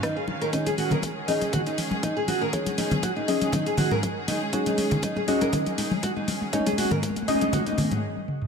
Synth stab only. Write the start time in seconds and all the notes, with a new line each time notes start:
Already playing: C#4 F4 F#4 C5
0.53 C#4 D#4 G#4 C#5
1.28 C#4 D#4 G#4 D#5
2.53 C#4 D#4 G#4 C#5
3.28 C#4 D#4 G#4 D#5
4.53 C#4 D#4 G#4 C#5
5.28 C#4 D#4 G#4 D#5
6.53 C#4 D#4 G#4 C#5
7.28 C#4 D#4 G#4 D#5